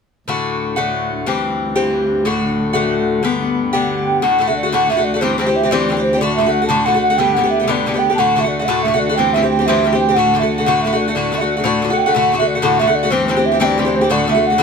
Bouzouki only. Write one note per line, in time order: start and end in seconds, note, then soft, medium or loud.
0.28 0.77 A2 medium
0.28 0.76 D3 medium
0.28 0.76 A3 medium
0.28 0.75 F#4 medium
0.76 1.26 A2 soft
0.76 1.26 D3 medium
0.76 1.27 A3 medium
0.76 1.26 F#4 medium
1.26 1.76 G2 medium
1.26 1.76 E3 medium
1.26 1.75 C4 medium
1.26 1.74 G4 medium
1.76 2.25 G2 medium
1.76 2.25 E3 medium
1.76 2.26 C4 medium
1.76 2.25 G4 medium
2.25 2.74 A2 medium
2.25 2.74 D3 medium
2.25 2.73 A3 medium
2.25 2.72 F#4 medium
2.73 3.22 A2 medium
2.73 3.23 D3 medium
2.73 3.24 A3 medium
2.73 3.23 F#4 medium
3.23 3.73 G2 medium
3.23 3.73 D3 medium
3.23 3.73 B3 medium
3.23 3.72 G4 medium
3.73 4.22 G2 soft
3.73 4.21 D3 medium
3.73 4.23 B3 medium
3.73 4.23 G4 medium
4.22 4.37 A2 medium
4.22 4.39 D3 medium
4.22 4.40 A3 soft
4.22 4.41 F#4 medium
4.39 4.48 A2 soft
4.39 4.48 D3 soft
4.39 4.48 A3 medium
4.39 4.46 F#4 soft
4.47 4.65 D3 soft
4.47 4.64 A3 soft
4.47 4.62 F#4 soft
4.63 4.72 D3 soft
4.63 4.73 A3 soft
4.63 4.72 F#4 soft
4.72 4.88 A2 medium
4.72 4.89 D3 medium
4.72 4.90 A3 medium
4.72 4.91 F#4 medium
4.90 4.98 A2 soft
4.90 4.98 D3 medium
4.90 4.97 A3 medium
4.90 4.96 F#4 medium
4.97 5.15 D3 soft
4.97 5.14 A3 soft
4.97 5.13 F#4 soft
5.14 5.22 D3 soft
5.14 5.22 A3 soft
5.14 5.22 F#4 soft
5.21 5.37 G2 medium
5.21 5.38 E3 medium
5.21 5.38 C4 medium
5.21 5.40 G4 medium
5.38 5.47 G2 medium
5.38 5.47 E3 medium
5.38 5.47 C4 medium
5.38 5.45 G4 medium
5.46 5.64 E3 soft
5.46 5.63 C4 soft
5.46 5.62 G4 soft
5.63 5.71 E3 soft
5.63 5.71 C4 soft
5.63 5.71 G4 medium
5.71 5.88 G2 medium
5.71 5.89 E3 medium
5.71 5.89 C4 medium
5.71 5.90 G4 medium
5.89 5.97 G2 soft
5.89 5.97 E3 medium
5.89 5.97 C4 soft
5.89 5.95 G4 medium
5.97 6.14 E3 soft
5.97 6.13 C4 soft
5.97 6.12 G4 soft
6.13 6.21 E3 soft
6.13 6.21 C4 soft
6.13 6.21 G4 soft
6.21 6.37 A2 medium
6.21 6.37 D3 medium
6.21 6.39 A3 medium
6.21 6.39 F#4 medium
6.38 6.46 A2 soft
6.38 6.46 D3 soft
6.38 6.47 A3 medium
6.38 6.45 F#4 medium
6.46 6.63 D3 soft
6.46 6.62 A3 soft
6.46 6.61 F#4 soft
6.62 6.68 D3 soft
6.62 6.69 A3 soft
6.62 6.69 F#4 soft
6.69 6.85 A2 medium
6.69 6.86 D3 medium
6.69 6.86 A3 medium
6.69 6.87 F#4 medium
6.86 6.95 A2 medium
6.86 6.95 D3 soft
6.86 6.95 A3 medium
6.86 6.93 F#4 medium
6.94 7.11 D3 soft
6.94 7.10 A3 soft
6.94 7.09 F#4 soft
7.10 7.17 D3 soft
7.10 7.19 A3 soft
7.10 7.19 F#4 medium
7.18 7.35 G2 medium
7.18 7.36 D3 medium
7.18 7.37 B3 medium
7.18 7.37 G4 medium
7.36 7.45 G2 soft
7.36 7.45 D3 soft
7.36 7.44 B3 medium
7.36 7.42 G4 medium
7.44 7.61 D3 soft
7.44 7.60 B3 soft
7.44 7.58 G4 soft
7.60 7.66 D3 soft
7.60 7.67 B3 soft
7.60 7.68 G4 soft
7.68 7.85 G2 medium
7.68 7.86 D3 medium
7.68 7.86 B3 medium
7.68 7.86 G4 medium
7.86 7.94 G2 soft
7.86 7.95 D3 medium
7.86 7.94 B3 soft
7.86 7.93 G4 soft
7.94 8.11 D3 soft
7.94 8.10 B3 soft
7.94 8.09 G4 soft
8.10 8.18 D3 soft
8.10 8.18 B3 soft
8.10 8.18 G4 soft
8.18 8.34 A2 medium
8.18 8.35 D3 medium
8.18 8.36 A3 medium
8.18 8.37 F#4 medium
8.35 8.43 A2 soft
8.35 8.44 D3 medium
8.35 8.44 A3 soft
8.35 8.43 F#4 medium
8.44 8.61 D3 soft
8.44 8.60 A3 soft
8.44 8.58 F#4 soft
8.59 8.67 D3 soft
8.59 8.68 A3 soft
8.59 8.67 F#4 soft
8.68 8.84 A2 medium
8.68 8.85 D3 medium
8.68 8.86 A3 medium
8.68 8.86 F#4 medium
8.85 8.93 A2 soft
8.85 8.94 D3 soft
8.85 8.94 A3 soft
8.85 8.93 F#4 medium
8.94 9.10 D3 soft
8.94 9.10 A3 soft
8.94 9.08 F#4 soft
9.09 9.18 D3 soft
9.09 9.18 A3 soft
9.09 9.17 F#4 soft
9.18 9.33 G2 soft
9.18 9.34 E3 medium
9.18 9.35 C4 medium
9.18 9.36 G4 medium
9.34 9.42 G2 soft
9.34 9.43 E3 soft
9.34 9.43 C4 medium
9.34 9.41 G4 medium
9.43 9.60 E3 soft
9.43 9.59 C4 soft
9.43 9.58 G4 soft
9.59 9.67 E3 soft
9.59 9.67 C4 soft
9.59 9.67 G4 soft
9.68 9.83 G2 medium
9.68 9.84 E3 medium
9.68 9.85 C4 medium
9.68 9.85 G4 medium
9.84 9.92 G2 medium
9.84 9.93 E3 soft
9.84 9.93 C4 soft
9.84 9.91 G4 soft
9.93 10.10 E3 soft
9.93 10.09 C4 soft
9.93 10.07 G4 soft
10.09 10.17 E3 soft
10.09 10.17 C4 soft
10.09 10.16 G4 soft
10.16 10.33 A2 medium
10.16 10.34 D3 medium
10.16 10.35 A3 medium
10.16 10.35 F#4 medium
10.34 10.41 A2 soft
10.34 10.42 D3 medium
10.34 10.42 A3 medium
10.34 10.41 F#4 medium
10.42 10.59 D3 soft
10.42 10.58 A3 soft
10.42 10.57 F#4 soft
10.58 10.66 D3 soft
10.58 10.66 A3 soft
10.58 10.65 F#4 soft
10.66 10.83 A2 medium
10.66 10.84 D3 medium
10.66 10.84 A3 medium
10.66 10.84 F#4 medium
10.85 10.92 A2 soft
10.85 10.92 D3 soft
10.85 10.92 A3 soft
10.85 10.91 F#4 medium
10.93 11.09 D3 soft
10.93 11.07 A3 soft
10.93 11.06 F#4 soft
11.08 11.15 D3 soft
11.08 11.15 A3 soft
11.08 11.15 F#4 soft
11.15 11.31 A2 medium
11.15 11.32 D3 medium
11.15 11.32 A3 medium
11.15 11.33 F#4 medium
11.32 11.40 A2 soft
11.32 11.40 D3 soft
11.32 11.41 A3 medium
11.32 11.40 F#4 medium
11.41 11.58 D3 soft
11.41 11.57 A3 soft
11.41 11.55 F#4 soft
11.57 11.63 D3 soft
11.57 11.64 A3 soft
11.57 11.64 F#4 soft
11.64 11.81 A2 medium
11.64 11.81 D3 medium
11.64 11.82 A3 medium
11.64 11.82 F#4 medium
11.82 11.90 A2 soft
11.82 11.90 D3 soft
11.82 11.90 A3 soft
11.82 11.89 F#4 medium
11.90 12.07 D3 soft
11.90 12.06 A3 soft
11.90 12.05 F#4 medium
12.06 12.15 D3 soft
12.06 12.14 A3 soft
12.06 12.14 F#4 medium
12.15 12.31 A2 medium
12.15 12.32 D3 medium
12.15 12.32 A3 medium
12.15 12.32 F#4 medium
12.32 12.39 A2 soft
12.32 12.40 D3 medium
12.32 12.40 A3 medium
12.32 12.38 F#4 medium
12.39 12.56 D3 soft
12.39 12.55 A3 soft
12.39 12.54 F#4 soft
12.55 12.62 D3 soft
12.55 12.62 A3 soft
12.55 12.63 F#4 soft
12.62 12.78 A2 medium
12.62 12.79 D3 medium
12.62 12.80 A3 medium
12.62 12.81 F#4 medium
12.80 12.88 A2 medium
12.80 12.88 D3 soft
12.80 12.88 A3 medium
12.80 12.86 F#4 medium
12.87 13.05 D3 soft
12.87 13.04 A3 soft
12.87 13.02 F#4 soft
13.03 13.11 D3 soft
13.03 13.12 A3 soft
13.03 13.11 F#4 soft
13.10 13.27 G2 medium
13.10 13.28 E3 medium
13.10 13.28 C4 medium
13.10 13.30 G4 medium
13.28 13.37 G2 medium
13.28 13.37 E3 medium
13.28 13.36 C4 medium
13.28 13.35 G4 medium
13.37 13.54 E3 soft
13.37 13.52 C4 soft
13.37 13.50 G4 soft
13.52 13.59 E3 soft
13.52 13.60 C4 soft
13.52 13.60 G4 soft
13.60 13.77 G2 medium
13.60 13.78 E3 medium
13.60 13.78 C4 medium
13.60 13.79 G4 medium
13.78 13.86 G2 soft
13.78 13.87 E3 medium
13.78 13.85 C4 medium
13.78 13.84 G4 soft
13.85 14.03 E3 soft
13.85 14.02 C4 soft
13.85 14.00 G4 soft
14.01 14.10 E3 soft
14.01 14.10 C4 soft
14.01 14.10 G4 soft
14.10 14.26 A2 medium
14.10 14.27 D3 medium
14.10 14.28 A3 medium
14.10 14.28 F#4 medium
14.27 14.36 A2 medium
14.27 14.36 D3 medium
14.27 14.35 A3 medium
14.27 14.33 F#4 soft
14.34 14.52 D3 soft
14.34 14.51 A3 soft
14.34 14.49 F#4 soft
14.50 14.58 D3 soft
14.50 14.59 A3 soft
14.50 14.59 F#4 soft
14.58 14.63 A2 medium
14.58 14.63 D3 medium
14.58 14.63 F#4 medium